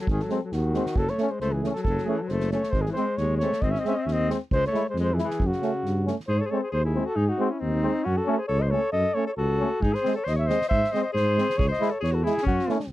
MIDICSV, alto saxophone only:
0, 0, Header, 1, 2, 480
1, 0, Start_track
1, 0, Tempo, 444444
1, 79, Time_signature, 2, 2, 24, 8
1, 7279, Tempo, 440852
1, 14012, End_track
2, 0, Start_track
2, 0, Title_t, "Alto saxophone"
2, 0, Program_c, 0, 65
2, 3, Note_on_c, 0, 54, 72
2, 89, Note_off_c, 0, 54, 0
2, 101, Note_on_c, 0, 51, 73
2, 250, Note_on_c, 0, 54, 58
2, 266, Note_off_c, 0, 51, 0
2, 463, Note_off_c, 0, 54, 0
2, 469, Note_on_c, 0, 54, 51
2, 566, Note_on_c, 0, 51, 75
2, 582, Note_off_c, 0, 54, 0
2, 1040, Note_on_c, 0, 54, 70
2, 1056, Note_off_c, 0, 51, 0
2, 1176, Note_on_c, 0, 57, 62
2, 1192, Note_off_c, 0, 54, 0
2, 1413, Note_on_c, 0, 56, 60
2, 1429, Note_off_c, 0, 57, 0
2, 1515, Note_off_c, 0, 56, 0
2, 1522, Note_on_c, 0, 57, 84
2, 1649, Note_on_c, 0, 52, 65
2, 1665, Note_off_c, 0, 57, 0
2, 1883, Note_off_c, 0, 52, 0
2, 1890, Note_on_c, 0, 54, 70
2, 1990, Note_off_c, 0, 54, 0
2, 2021, Note_on_c, 0, 54, 74
2, 2262, Note_on_c, 0, 52, 68
2, 2278, Note_off_c, 0, 54, 0
2, 2398, Note_on_c, 0, 54, 59
2, 2414, Note_off_c, 0, 52, 0
2, 2499, Note_on_c, 0, 57, 85
2, 2515, Note_off_c, 0, 54, 0
2, 2717, Note_off_c, 0, 57, 0
2, 2724, Note_on_c, 0, 57, 70
2, 2959, Note_on_c, 0, 56, 80
2, 2975, Note_off_c, 0, 57, 0
2, 3106, Note_on_c, 0, 52, 66
2, 3122, Note_off_c, 0, 56, 0
2, 3206, Note_off_c, 0, 52, 0
2, 3218, Note_on_c, 0, 56, 73
2, 3440, Note_off_c, 0, 56, 0
2, 3440, Note_on_c, 0, 56, 86
2, 3671, Note_off_c, 0, 56, 0
2, 3678, Note_on_c, 0, 57, 72
2, 3919, Note_on_c, 0, 60, 71
2, 3935, Note_off_c, 0, 57, 0
2, 4010, Note_on_c, 0, 61, 68
2, 4026, Note_off_c, 0, 60, 0
2, 4098, Note_on_c, 0, 60, 63
2, 4114, Note_off_c, 0, 61, 0
2, 4190, Note_on_c, 0, 61, 70
2, 4206, Note_off_c, 0, 60, 0
2, 4292, Note_on_c, 0, 60, 70
2, 4309, Note_off_c, 0, 61, 0
2, 4391, Note_on_c, 0, 61, 62
2, 4407, Note_off_c, 0, 60, 0
2, 4446, Note_on_c, 0, 60, 84
2, 4462, Note_off_c, 0, 61, 0
2, 4633, Note_off_c, 0, 60, 0
2, 4903, Note_on_c, 0, 56, 86
2, 5014, Note_off_c, 0, 56, 0
2, 5036, Note_on_c, 0, 57, 71
2, 5247, Note_off_c, 0, 57, 0
2, 5285, Note_on_c, 0, 56, 66
2, 5370, Note_off_c, 0, 56, 0
2, 5398, Note_on_c, 0, 56, 81
2, 5529, Note_on_c, 0, 52, 53
2, 5545, Note_off_c, 0, 56, 0
2, 5619, Note_off_c, 0, 52, 0
2, 5647, Note_on_c, 0, 52, 68
2, 5887, Note_on_c, 0, 49, 69
2, 5903, Note_off_c, 0, 52, 0
2, 6582, Note_off_c, 0, 49, 0
2, 6787, Note_on_c, 0, 68, 74
2, 6924, Note_on_c, 0, 69, 71
2, 6940, Note_off_c, 0, 68, 0
2, 6976, Note_on_c, 0, 68, 56
2, 6993, Note_off_c, 0, 69, 0
2, 7032, Note_on_c, 0, 69, 56
2, 7048, Note_off_c, 0, 68, 0
2, 7146, Note_off_c, 0, 69, 0
2, 7153, Note_on_c, 0, 68, 59
2, 7242, Note_off_c, 0, 68, 0
2, 7249, Note_on_c, 0, 68, 67
2, 7380, Note_off_c, 0, 68, 0
2, 7386, Note_on_c, 0, 64, 63
2, 7620, Note_on_c, 0, 66, 66
2, 7637, Note_off_c, 0, 64, 0
2, 7729, Note_on_c, 0, 63, 74
2, 7745, Note_off_c, 0, 66, 0
2, 7850, Note_off_c, 0, 63, 0
2, 7850, Note_on_c, 0, 63, 61
2, 8091, Note_on_c, 0, 61, 63
2, 8107, Note_off_c, 0, 63, 0
2, 8211, Note_on_c, 0, 60, 75
2, 8228, Note_off_c, 0, 61, 0
2, 8686, Note_on_c, 0, 61, 67
2, 8702, Note_off_c, 0, 60, 0
2, 8831, Note_on_c, 0, 66, 60
2, 8847, Note_off_c, 0, 61, 0
2, 9072, Note_on_c, 0, 68, 62
2, 9088, Note_off_c, 0, 66, 0
2, 9169, Note_off_c, 0, 68, 0
2, 9175, Note_on_c, 0, 69, 84
2, 9323, Note_on_c, 0, 72, 57
2, 9340, Note_off_c, 0, 69, 0
2, 9420, Note_on_c, 0, 69, 80
2, 9436, Note_off_c, 0, 72, 0
2, 9649, Note_off_c, 0, 69, 0
2, 9656, Note_on_c, 0, 69, 82
2, 9892, Note_off_c, 0, 69, 0
2, 9892, Note_on_c, 0, 69, 70
2, 10023, Note_off_c, 0, 69, 0
2, 10029, Note_on_c, 0, 69, 70
2, 10083, Note_off_c, 0, 69, 0
2, 10144, Note_on_c, 0, 66, 81
2, 10631, Note_on_c, 0, 63, 76
2, 10648, Note_off_c, 0, 66, 0
2, 10752, Note_on_c, 0, 68, 71
2, 10768, Note_off_c, 0, 63, 0
2, 10984, Note_off_c, 0, 68, 0
2, 10991, Note_on_c, 0, 69, 74
2, 11092, Note_on_c, 0, 72, 77
2, 11108, Note_off_c, 0, 69, 0
2, 11210, Note_off_c, 0, 72, 0
2, 11217, Note_on_c, 0, 73, 61
2, 11326, Note_on_c, 0, 72, 85
2, 11343, Note_off_c, 0, 73, 0
2, 11563, Note_off_c, 0, 72, 0
2, 11570, Note_on_c, 0, 72, 83
2, 11805, Note_off_c, 0, 72, 0
2, 11805, Note_on_c, 0, 72, 76
2, 11935, Note_off_c, 0, 72, 0
2, 11942, Note_on_c, 0, 72, 65
2, 12047, Note_off_c, 0, 72, 0
2, 12054, Note_on_c, 0, 68, 86
2, 12542, Note_off_c, 0, 68, 0
2, 12542, Note_on_c, 0, 68, 87
2, 12650, Note_off_c, 0, 68, 0
2, 12657, Note_on_c, 0, 72, 79
2, 12893, Note_on_c, 0, 69, 68
2, 12909, Note_off_c, 0, 72, 0
2, 13003, Note_off_c, 0, 69, 0
2, 13010, Note_on_c, 0, 68, 81
2, 13132, Note_on_c, 0, 66, 69
2, 13149, Note_off_c, 0, 68, 0
2, 13260, Note_on_c, 0, 64, 75
2, 13276, Note_off_c, 0, 66, 0
2, 13463, Note_off_c, 0, 64, 0
2, 13469, Note_on_c, 0, 61, 81
2, 13937, Note_off_c, 0, 61, 0
2, 14012, End_track
0, 0, End_of_file